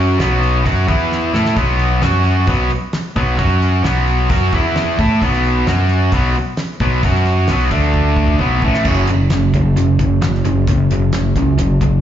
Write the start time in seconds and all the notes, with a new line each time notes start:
Already playing: F#2 F#3 C#4 F#4
0.19 B1 B2 F#3 B3, snare, open hi-hat
0.43 open hi-hat
0.65 F#2 F#3 C#4 F#4, kick, open hi-hat
0.88 E2 E3 B3 E4, kick, open hi-hat
1.12 snare
1.34 A2 A3 E4 A4, snare
1.45 snare
1.56 B1 B2 F#3 B3, kick, open hi-hat
1.79 open hi-hat
2.02 F#2 F#3 C#4 F#4, snare, open hi-hat
2.25 open hi-hat
2.47 B1 B2 F#3 B3, kick, open hi-hat
2.70 open hi-hat
2.93 snare, open hi-hat
3.16 B1 B2 F#3 B3, kick, open hi-hat
3.38 F#2 F#3 C#4 F#4, kick, open hi-hat
3.62 open hi-hat
3.84 B1 B2 F#3 B3, snare, open hi-hat
4.07 open hi-hat
4.30 F#2 F#3 C#4 F#4, kick, open hi-hat
4.53 E2 E3 B3 E4, kick, open hi-hat
4.76 snare, open hi-hat
4.99 A2 A3 E4 A4, kick, open hi-hat
5.22 B1 B2 F#3 B3, kick, open hi-hat
5.33 snare
5.44 open hi-hat
5.67 F#2 F#3 C#4 F#4, snare, open hi-hat
5.89 open hi-hat
6.12 B1 B2 F#3 B3, kick, open hi-hat
6.35 open hi-hat
6.57 snare, open hi-hat
6.80 B1 B2 F#3 B3, kick, open hi-hat
7.03 F#2 F#3 C#4 F#4, kick, open hi-hat
7.15 snare
7.25 open hi-hat
7.47 B1 B2 F#3 B3, snare, open hi-hat
7.71 D2 D3 A3 D4, kick, open hi-hat
7.94 kick
8.16 kick
8.28 kick
8.39 B1 B2 F#3 B3, kick
8.62 A1 A2 E3 A3, kick
8.74 snare
8.85 F#1 F#2 C#3 F#3, kick, crash
9.07 F#1 F#2 C#3, closed hi-hat
9.30 F#1 F#2 C#3, snare, closed hi-hat
9.54 F#1 F#2 C#3, kick, closed hi-hat
9.76 F#1 F#2 C#3, closed hi-hat
9.99 F#1 F#2 C#3, kick, closed hi-hat
10.22 F#1 F#2 C#3, snare, closed hi-hat
10.34 snare
10.45 F#1 F#2 C#3, closed hi-hat
10.67 F#1 F#2 C#3, kick, closed hi-hat
10.90 F#1 F#2 C#3, closed hi-hat
11.13 F#1 F#2 C#3, snare, closed hi-hat
11.36 C#2 F#2 C#3, kick, closed hi-hat
11.58 F#1 F#2 C#3, closed hi-hat
11.81 F#1 F#2 C#3, kick, closed hi-hat